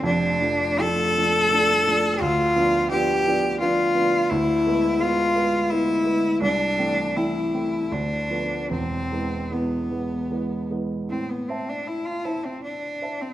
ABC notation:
X:1
M:3/4
L:1/16
Q:1/4=80
K:Cmix
V:1 name="Cello"
D4 A8 | [K:Am] F4 G4 F4 | E4 F4 E4 | D4 E4 D4 |
C4 B,6 z2 | C B, C D E F E C D3 C |]
V:2 name="Grand piano"
[F,,,F,,]2 [F,A,D]2 [F,A,D]2 [F,A,D]2 [F,A,D]2 [F,A,D]2 | [K:Am] D,,2 [F,B,D]2 [F,B,D]2 [F,B,D]2 [F,B,D]2 [F,B,D]2 | D,,2 [^G,B,]2 [G,B,]2 [G,B,]2 [G,B,]2 [G,B,]2 | C,,2 [E,A,C]2 [E,A,C]2 [E,A,C]2 D,,2 [F,A,B,]2 |
[E,,,E,,]2 [E,^G,B,]2 [E,G,B,]2 [E,G,B,]2 [E,G,B,]2 [E,G,B,]2 | A,,2 [cea]4 [cea]4 [cea]2 |]